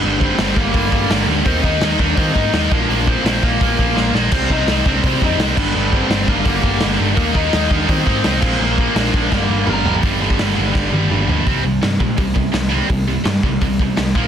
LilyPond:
<<
  \new Staff \with { instrumentName = "Lead electric guitar" } { \time 4/4 \key c \minor \tempo 4 = 168 <d' d''>8 <c' c''>4 <bes bes'>2 r8 | <c' c''>8 <ees' ees''>4 <d' d''>8 <c' c''>8 <ees' ees''>4 <d' d''>8~ | <d' d''>8 <c' c''>4 <bes bes'>2 r8 | <c' c''>8 <ees' ees''>4 <d' d''>8 <c' c''>8 <ees' ees''>4 <d' d''>8~ |
<d' d''>8 <c' c''>4 <bes bes'>2 r8 | <bes bes'>8 <ees' ees''>4 <d' d''>8 <c' c''>2 | <bes bes'>4 <d' d''>4 <bes bes'>4 <bes' bes''>8. r16 | r1 |
r1 | r1 | }
  \new Staff \with { instrumentName = "Distorted electric guitar" } { \clef bass \time 4/4 \key c \minor <g, d g>8 <g, d g>8 <g, d g>8 <g, d g>8 <g, d g>8 <g, d g>8 <g, d g>8 <g, d g>8 | <ees bes ees'>8 <ees bes ees'>8 <ees bes ees'>8 <ees bes ees'>8 <ees bes ees'>8 <ees bes ees'>8 <ees bes ees'>8 <bes, f bes>8 | <bes, f bes>8 <bes, f bes>8 <bes, f bes>8 <bes, f bes>8 <bes, f bes>8 <bes, f bes>8 <bes, f bes>8 <bes, f bes>8 | <c g c'>8 <c g c'>8 <c g c'>8 <c g c'>8 <c g c'>8 <c g c'>8 <c g c'>8 <g, d g>8 |
<g, d g>8 <g, d g>8 <g, d g>8 <g, d g>8 <g, d g>8 <g, d g>8 <g, d g>8 <g, d g>8 | <ees bes ees'>8 <ees bes ees'>8 <ees bes ees'>8 <ees bes ees'>8 <ees bes ees'>8 <ees bes ees'>8 <ees bes ees'>8 <bes, f bes>8 | <bes, f bes>8 <bes, f bes>8 <bes, f bes>8 <bes, f bes>8 <g, d g>8 <g, d g>8 <g, d g>8 <g, d g>8 | <g, d g>8 <g, d g>8 <g, d g>8 <g, d g>8 <g, d g>8 <g, d g>8 <g, d g>8 <g, d g>8 |
<c g c'>8 <c g>8 <c g>8 <c g>8 <c g>8 <c g>8 <c g>8 <c g c'>8 | <c g>8 <c g>8 <c g>8 <c g>8 <c g>8 <c g>8 <c g>8 <bes, f bes>8 | }
  \new Staff \with { instrumentName = "Picked electric bass" } { \clef bass \time 4/4 \key c \minor g,,4 g,,8 g,,8 g,,8 g,,8 g,,8 d,8 | ees,8 ees,8 ees,8 ees,8 ees8 aes,8 ees,8 bes,,8 | bes,,4 bes,,8 bes,,8 bes,,8 bes,,8 bes,,8 bes,,8 | c,8 c,8 c,8 c,8 c8 f,8 c,8 g,,8 |
g,,4 g,,8 g,,8 g,,8 g,,8 g,,8 g,,8 | ees,8 ees,8 ees,8 ees,8 ees8 aes,8 c,8 bes,,8 | bes,,4 bes,,8 bes,,8 g,,8 g,,8 g,,8 g,,8 | g,,8 g,,8 g,,8 g,,8 g,,8 g,,8 g,,8 d,8 |
c,8 c,8 g,8 bes,8 c,4 c,4 | c,4 g,8 c,8 c,4 c,8 bes,,8 | }
  \new DrumStaff \with { instrumentName = "Drums" } \drummode { \time 4/4 r8 bd8 <hho sn>8 bd8 <hho bd>8 bd8 <hho sn>4 | <hho bd>8 bd8 <hho sn>8 bd8 <hho bd>8 bd8 <hho sn>8 bd8 | hho8 bd8 <hho sn>8 bd8 <hho bd>8 bd8 sn8 sn8 | <cymc hho bd>8 bd8 <hho sn>8 bd8 <hho bd>8 bd8 <hho sn>8 <cymc bd>8 |
r8 bd8 <hho sn>8 bd8 <hho bd>8 bd8 <hho sn>4 | <hho bd>8 bd8 <hho sn>8 bd8 <hho bd>8 bd8 <hho sn>8 <cymc bd>8 | r8 bd8 <hho sn>8 bd8 <bd sn>4 toml8 tomfh8 | <hho bd>8. bd16 <hho sn>4 <bd sn>8 tommh8 toml8 tomfh8 |
<hho bd>4 <hho sn>8 bd8 <hho bd>8 bd8 <hho sn>4 | <hho bd>4 <hho sn>8 bd8 <hho bd>8 bd8 <hho sn>8 bd8 | }
>>